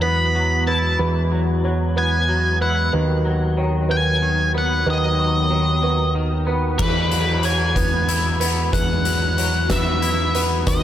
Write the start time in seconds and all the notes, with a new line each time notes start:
Already playing: E2 E3 F#3 G#3 B3 F#4
0.02 B3 B4 B5
0.35 F#3
0.67 E4 B4 A5
0.99 E2 E3 B4
1.32 F#3
1.64 F#3 C#5
1.96 B3 B4 G#5
2.29 F#3
2.61 E4 B4 F#5
2.92 D#2 D#3 F#3 B3 F#4 B4
3.25 F#3
3.57 D#3 C#5
3.89 F#3 B4 G#5
4.22 D#3
4.54 B3 B4 F#5
4.86 D#2 D#3 B4 D#5
5.19 F#3
5.50 D#3 C#5
5.82 F#3 B4
6.15 D#3
6.47 B3 B4
6.78 E2 E3 G#3 B3 F#4 B4, kick, crash
7.11 F#3, closed hi-hat
7.43 F#3 C#5 G#5, closed hi-hat
7.76 B3 B4, kick, closed hi-hat
8.08 E4, closed hi-hat
8.40 B3 B4, closed hi-hat
8.72 E2 E3 B4 F#5, kick, closed hi-hat
9.05 F#3, closed hi-hat
9.38 F#3 C#5, closed hi-hat
9.70 B3 B4 E5, kick, snare, closed hi-hat
10.02 E4, closed hi-hat
10.35 B3 B4, closed hi-hat
10.66 D#2 D#3 B4 D#5, kick, closed hi-hat